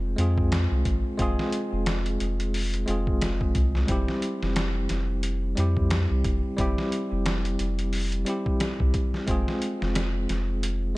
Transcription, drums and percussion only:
0.18 closed hi-hat medium
0.38 kick medium
0.52 snare loud
0.52 closed hi-hat medium
0.85 kick medium
0.85 closed hi-hat medium
1.19 kick loud
1.19 closed hi-hat medium
1.39 snare medium
1.52 closed hi-hat medium
1.86 snare loud
1.86 closed hi-hat medium
2.06 closed hi-hat soft
2.20 closed hi-hat medium
2.40 closed hi-hat soft
2.54 open hi-hat medium
2.74 closed hi-hat soft
2.88 closed hi-hat medium
3.07 kick medium
3.21 snare loud
3.21 closed hi-hat medium
3.41 kick medium
3.55 kick medium
3.55 closed hi-hat medium
3.75 snare soft
3.88 kick medium
3.88 closed hi-hat medium
4.08 snare soft
4.22 closed hi-hat medium
4.43 snare soft
4.56 snare loud
4.56 closed hi-hat medium
4.89 snare soft
4.89 closed hi-hat medium
5.23 closed hi-hat medium
5.57 closed hi-hat medium
5.77 kick medium
5.90 snare loud
5.90 closed hi-hat medium
6.24 kick medium
6.24 closed hi-hat medium
6.58 kick loud
6.58 closed hi-hat medium
6.78 snare medium
6.92 closed hi-hat medium
7.26 snare loud
7.26 closed hi-hat medium
7.45 closed hi-hat soft
7.59 closed hi-hat medium
7.79 closed hi-hat soft
7.93 open hi-hat medium
8.12 closed hi-hat soft
8.26 closed hi-hat medium
8.46 kick medium
8.60 snare loud
8.60 closed hi-hat medium
8.80 kick medium
8.94 kick medium
8.94 closed hi-hat medium
9.14 snare soft
9.28 kick medium
9.28 closed hi-hat medium
9.48 snare soft
9.62 closed hi-hat medium
9.82 snare soft
9.95 snare loud
9.95 closed hi-hat medium
10.29 snare soft
10.29 closed hi-hat medium
10.63 closed hi-hat medium

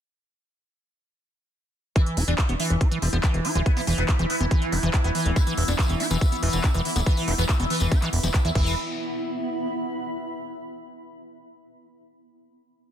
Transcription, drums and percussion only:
1.96 kick loud
1.96 closed hi-hat medium
2.06 closed hi-hat medium
2.17 open hi-hat loud
2.28 closed hi-hat medium
2.38 kick loud
2.38 clap loud
2.38 closed hi-hat medium
2.49 closed hi-hat medium
2.60 open hi-hat loud
2.70 closed hi-hat medium
2.81 kick loud
2.81 closed hi-hat medium
2.92 closed hi-hat medium
3.02 open hi-hat loud
3.13 closed hi-hat medium
3.23 kick loud
3.23 clap loud
3.23 closed hi-hat medium
3.34 closed hi-hat medium
3.45 open hi-hat loud
3.55 closed hi-hat medium
3.66 kick loud
3.66 closed hi-hat medium
3.77 open hi-hat medium
3.87 open hi-hat loud
3.98 closed hi-hat medium
4.09 kick loud
4.09 clap loud
4.09 closed hi-hat medium
4.19 closed hi-hat medium
4.30 open hi-hat loud
4.40 closed hi-hat medium
4.51 kick loud
4.51 closed hi-hat medium
4.62 closed hi-hat soft
4.72 open hi-hat loud
4.83 closed hi-hat soft
4.94 kick loud
4.94 clap loud
4.94 closed hi-hat medium
5.04 closed hi-hat medium
5.15 open hi-hat loud
5.26 closed hi-hat medium
5.36 kick loud
5.36 closed hi-hat medium
5.36 tambourine medium
5.47 closed hi-hat medium
5.47 tambourine soft
5.57 open hi-hat loud
5.68 closed hi-hat soft
5.68 tambourine medium
5.79 kick loud
5.79 clap loud
5.79 closed hi-hat medium
5.79 tambourine medium
5.89 closed hi-hat medium
5.89 tambourine soft
6.00 open hi-hat loud
6.11 closed hi-hat medium
6.11 tambourine medium
6.21 kick loud
6.21 closed hi-hat medium
6.21 tambourine medium
6.32 closed hi-hat medium
6.32 tambourine soft
6.43 open hi-hat loud
6.53 closed hi-hat soft
6.53 tambourine medium
6.63 kick loud
6.63 clap loud
6.63 closed hi-hat medium
6.63 tambourine medium
6.74 closed hi-hat medium
6.74 tambourine soft
6.85 open hi-hat loud
6.96 closed hi-hat medium
6.96 tambourine medium
7.06 kick loud
7.06 closed hi-hat medium
7.06 tambourine medium
7.17 open hi-hat medium
7.17 tambourine soft
7.28 open hi-hat loud
7.38 closed hi-hat soft
7.38 tambourine medium
7.49 kick loud
7.49 clap loud
7.49 closed hi-hat medium
7.49 tambourine medium
7.60 closed hi-hat soft
7.60 tambourine soft
7.70 open hi-hat loud
7.80 closed hi-hat soft
7.80 tambourine medium
7.91 kick loud
7.91 closed hi-hat medium
7.91 tambourine medium
8.02 clap soft
8.02 closed hi-hat medium
8.02 tambourine soft
8.13 open hi-hat loud
8.23 closed hi-hat soft
8.23 tambourine medium
8.34 kick loud
8.34 clap loud
8.34 closed hi-hat medium
8.45 closed hi-hat soft
8.45 tambourine soft
8.55 kick loud
8.55 crash medium
8.66 tambourine medium

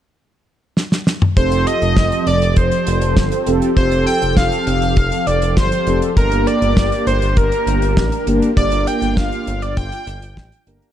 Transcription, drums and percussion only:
0.77 snare medium
0.92 snare medium
1.07 snare medium
1.22 mid tom medium
1.37 kick loud
1.37 closed hi-hat medium
1.52 closed hi-hat medium
1.67 closed hi-hat medium
1.82 closed hi-hat soft
1.97 kick loud
1.97 snare loud
2.12 closed hi-hat soft
2.27 closed hi-hat medium
2.42 closed hi-hat medium
2.56 kick loud
2.56 closed hi-hat medium
2.72 closed hi-hat medium
2.87 closed hi-hat medium
3.02 closed hi-hat medium
3.17 kick loud
3.17 snare loud
3.32 closed hi-hat medium
3.47 closed hi-hat medium
3.62 closed hi-hat soft
3.77 kick loud
3.77 closed hi-hat medium
3.92 closed hi-hat medium
4.07 closed hi-hat medium
4.22 closed hi-hat soft
4.37 kick loud
4.37 snare loud
4.52 closed hi-hat soft
4.67 closed hi-hat medium
4.82 closed hi-hat medium
4.97 kick loud
4.97 closed hi-hat medium
5.12 closed hi-hat medium
5.27 closed hi-hat medium
5.42 closed hi-hat medium
5.57 kick loud
5.57 snare loud
5.72 closed hi-hat medium
5.87 closed hi-hat medium
6.02 closed hi-hat soft
6.17 kick loud
6.17 closed hi-hat medium
6.32 closed hi-hat medium
6.47 closed hi-hat medium
6.62 closed hi-hat soft
6.77 kick loud
6.77 snare loud
6.92 closed hi-hat soft
7.07 closed hi-hat medium
7.22 closed hi-hat medium
7.37 kick loud
7.37 closed hi-hat medium
7.52 closed hi-hat medium
7.67 closed hi-hat medium
7.82 closed hi-hat medium
7.97 kick loud
7.97 snare loud
8.12 closed hi-hat medium
8.27 closed hi-hat medium
8.42 closed hi-hat medium
8.57 kick loud
8.57 closed hi-hat medium
8.72 closed hi-hat medium
8.87 closed hi-hat medium
9.02 closed hi-hat soft
9.17 kick loud
9.17 snare loud
9.32 closed hi-hat soft
9.47 closed hi-hat medium
9.62 closed hi-hat medium
9.77 kick loud
9.77 closed hi-hat medium
9.92 closed hi-hat medium
10.07 closed hi-hat medium
10.22 closed hi-hat medium
10.37 kick loud
10.37 snare loud
10.52 closed hi-hat medium
10.67 closed hi-hat medium
10.82 closed hi-hat medium

